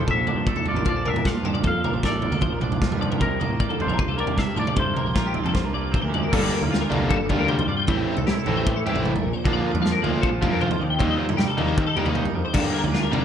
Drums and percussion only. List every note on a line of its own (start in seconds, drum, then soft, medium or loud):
0.08 kick loud
0.08 floor tom medium
0.27 floor tom medium
0.27 mid tom medium
0.47 kick loud
0.56 floor tom medium
0.66 floor tom medium
0.76 floor tom medium
0.85 kick loud
0.85 floor tom medium
1.06 mid tom medium
1.16 floor tom medium
1.25 kick loud
1.25 snare medium
1.45 floor tom medium
1.55 mid tom medium
1.64 kick loud
1.64 floor tom medium
1.84 floor tom medium
1.84 mid tom medium
2.03 kick medium
2.03 snare medium
2.22 floor tom medium
2.32 floor tom medium
2.41 kick loud
2.41 floor tom medium
2.61 mid tom medium
2.72 floor tom medium
2.82 kick loud
2.82 snare medium
2.92 floor tom medium
2.92 mid tom medium
3.02 floor tom medium
3.12 floor tom medium
3.12 mid tom medium
3.21 kick loud
3.21 floor tom medium
3.41 floor tom medium
3.41 mid tom medium
3.60 kick loud
3.70 floor tom medium
3.80 floor tom medium
3.90 floor tom medium
3.99 kick loud
3.99 floor tom medium
4.19 mid tom medium
4.27 floor tom medium
4.38 kick medium
4.38 snare medium
4.58 floor tom medium
4.67 mid tom medium
4.76 kick loud
4.76 floor tom medium
4.97 floor tom medium
4.97 mid tom medium
5.16 kick loud
5.16 snare medium
5.34 floor tom medium
5.46 floor tom medium
5.55 kick loud
5.55 snare medium
5.94 kick loud
5.94 mid tom medium
6.14 floor tom medium
6.33 kick loud
6.33 floor tom medium
6.33 crash loud
6.63 floor tom medium
6.74 snare medium
6.92 floor tom medium
7.11 kick loud
7.29 kick medium
7.29 floor tom medium
7.48 mid tom medium
7.59 floor tom medium
7.87 kick loud
7.87 floor tom medium
8.17 floor tom medium
8.27 snare medium
8.27 mid tom medium
8.46 floor tom medium
8.67 kick loud
8.87 floor tom medium
8.96 mid tom medium
9.05 mid tom medium
9.16 floor tom medium
9.45 kick loud
9.45 floor tom medium
9.75 floor tom medium
9.86 snare medium
10.04 floor tom medium
10.23 kick loud
10.43 kick medium
10.43 floor tom medium
10.61 mid tom medium
10.71 floor tom medium
11.00 kick loud
11.00 floor tom medium
11.29 floor tom medium
11.38 snare medium
11.38 mid tom medium
11.58 floor tom medium
11.78 kick loud
11.97 floor tom medium
12.06 mid tom medium
12.15 mid tom medium
12.25 floor tom medium
12.54 kick loud
12.54 floor tom medium
12.54 crash loud
12.84 floor tom medium
12.95 snare medium
13.13 floor tom medium